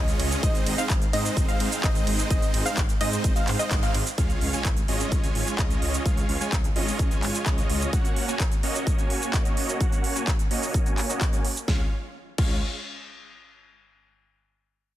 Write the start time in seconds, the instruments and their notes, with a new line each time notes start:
Already playing: detuned saw bass C#2, supersaw synth G#3 C#4 F4 C#5 D#5, synth pluck D#5
0.08 closed hi-hat, cabasa
0.20 detuned saw bass C#2, open hi-hat, ride
0.31 closed hi-hat, cabasa
0.43 detuned saw bass G#1, supersaw synth G#3 C4 D#4 C5 D#5, synth pluck D#5, kick, closed hi-hat, ride, cabasa
0.55 closed hi-hat, cabasa
0.66 detuned saw bass G#1, open hi-hat, ride
0.78 supersaw synth G#3 C4 D#4 C5 F5, synth pluck F5, closed hi-hat, cabasa
0.90 detuned saw bass G#1, kick, clap, closed hi-hat, ride, cabasa
1.02 closed hi-hat, cabasa
1.13 detuned saw bass G#2, supersaw synth G#3 C4 D#4 C5 D#5, synth pluck D#5, open hi-hat, ride
1.25 closed hi-hat, cabasa
1.37 detuned saw bass G#1, kick, closed hi-hat, ride, cabasa
1.48 supersaw synth G#3 C4 D#4 C5 F5, synth pluck F5, closed hi-hat, cabasa
1.60 detuned saw bass G#2, open hi-hat, ride
1.72 closed hi-hat, cabasa
1.84 detuned saw bass G#1, supersaw synth G#3 C4 D#4 C5 D#5, synth pluck D#5, kick, clap, closed hi-hat, ride, cabasa
1.95 closed hi-hat, cabasa
2.07 detuned saw bass G#1, open hi-hat, ride
2.19 closed hi-hat, cabasa
2.30 detuned saw bass G#1, supersaw synth G#3 C4 D#4 C5 D#5, synth pluck D#5, kick, closed hi-hat, ride, cabasa
2.42 closed hi-hat, cabasa
2.54 detuned saw bass G#1, open hi-hat, ride
2.66 supersaw synth G#3 C4 D#4 C5 F5, synth pluck F5, closed hi-hat, cabasa
2.77 detuned saw bass G#1, kick, clap, closed hi-hat, ride, cabasa
2.89 closed hi-hat, cabasa
3.01 detuned saw bass G#2, supersaw synth G#3 C4 D#4 C5 D#5, synth pluck D#5, open hi-hat, ride
3.12 closed hi-hat, cabasa
3.24 detuned saw bass G#1, kick, closed hi-hat, ride, cabasa
3.36 supersaw synth G#3 C4 D#4 C5 F5, synth pluck F5, closed hi-hat, cabasa
3.48 detuned saw bass G#2, clap, open hi-hat, ride
3.59 supersaw synth G#3 C4 D#4 C5 D#5, synth pluck D#5, closed hi-hat, cabasa
3.71 detuned saw bass G#1, kick, clap, closed hi-hat, ride, cabasa
3.83 supersaw synth G#3 C4 D#4 C5 F5, synth pluck F5, closed hi-hat, cabasa
3.94 detuned saw bass G#1, open hi-hat, ride
4.06 closed hi-hat, cabasa
4.18 detuned saw bass C#2, supersaw synth G#3 C#4 F4 C#5 F5, kick, closed hi-hat, impact, cabasa
4.30 closed hi-hat, cabasa
4.41 detuned saw bass C#2, open hi-hat
4.53 supersaw synth G#3 C#4 F4 C#5 G#5, closed hi-hat, cabasa
4.65 detuned saw bass C#2, kick, clap, closed hi-hat, cabasa
4.77 closed hi-hat, cabasa
4.88 detuned saw bass G#1, supersaw synth G#3 C#4 F4 C#5 D#5, open hi-hat
5.00 closed hi-hat, cabasa
5.12 detuned saw bass C#2, kick, closed hi-hat, cabasa
5.23 supersaw synth G#3 C#4 F4 C#5 G#5, closed hi-hat, cabasa
5.35 detuned saw bass G#1, open hi-hat
5.47 closed hi-hat, cabasa
5.59 detuned saw bass C#2, supersaw synth G#3 C#4 F4 C#5 D#5, kick, clap, closed hi-hat, cabasa
5.70 closed hi-hat, cabasa
5.82 detuned saw bass C#2, open hi-hat
5.94 closed hi-hat, cabasa
6.06 detuned saw bass C#2, supersaw synth G#3 C#4 F4 C#5 F5, kick, closed hi-hat, cabasa
6.17 closed hi-hat, cabasa
6.29 detuned saw bass C#2, open hi-hat
6.41 supersaw synth G#3 C#4 F4 C#5 G#5, closed hi-hat, cabasa
6.52 detuned saw bass C#2, kick, clap, closed hi-hat, cabasa
6.64 closed hi-hat, cabasa
6.76 detuned saw bass G#1, supersaw synth G#3 C#4 F4 C#5 D#5, open hi-hat
6.88 open hi-hat, cabasa
6.99 detuned saw bass C#2, kick, closed hi-hat, cabasa
7.11 supersaw synth G#3 C#4 F4 C#5 G#5, closed hi-hat, cabasa
7.23 detuned saw bass G#1, clap, open hi-hat
7.34 closed hi-hat, cabasa
7.46 detuned saw bass C#2, supersaw synth G#3 C#4 F4 C#5 D#5, kick, clap, closed hi-hat, cabasa
7.58 closed hi-hat, cabasa
7.70 detuned saw bass C#2, open hi-hat
7.81 closed hi-hat, cabasa
7.93 supersaw synth A#3 C#4 F#4 C#5 F#5, kick, closed hi-hat, cabasa
8.05 closed hi-hat, cabasa
8.16 open hi-hat
8.28 supersaw synth A#3 C#4 F#4 C#5 G#5, closed hi-hat, cabasa
8.40 kick, clap, closed hi-hat, cabasa
8.52 closed hi-hat, cabasa
8.63 supersaw synth A#3 C#4 F#4 C#5 D#5, open hi-hat
8.75 closed hi-hat, cabasa
8.87 kick, closed hi-hat, cabasa
8.98 supersaw synth A#3 C#4 F#4 C#5 G#5, closed hi-hat, cabasa
9.10 open hi-hat
9.22 closed hi-hat, cabasa
9.34 supersaw synth A#3 C#4 F#4 C#5 D#5, kick, clap, closed hi-hat, cabasa
9.45 closed hi-hat, cabasa
9.57 open hi-hat
9.69 closed hi-hat, cabasa
9.80 supersaw synth A#3 C#4 F#4 C#5 F#5, kick, closed hi-hat, cabasa
9.92 closed hi-hat, cabasa
10.04 open hi-hat
10.16 supersaw synth A#3 C#4 F#4 C#5 G#5, closed hi-hat, cabasa
10.27 kick, clap, closed hi-hat, cabasa
10.39 closed hi-hat, cabasa
10.51 supersaw synth A#3 C#4 F#4 C#5 D#5, open hi-hat
10.63 open hi-hat, cabasa
10.74 kick, closed hi-hat, cabasa
10.86 supersaw synth A#3 C#4 F#4 C#5 G#5, closed hi-hat, cabasa
10.98 clap, open hi-hat
11.09 supersaw synth A#3 C#4 F#4 C#5 D#5, closed hi-hat, cabasa
11.21 kick, clap, closed hi-hat, cabasa
11.33 supersaw synth A#3 C#4 F#4 C#5 G#5, closed hi-hat, cabasa
11.45 open hi-hat
11.56 closed hi-hat, cabasa
11.68 detuned saw bass C#2, supersaw synth G#3 C#4 F4 C#5 F5, kick, snare
12.38 detuned saw bass C#2, supersaw synth G#3 C#4 F4 C#5 F5, kick, crash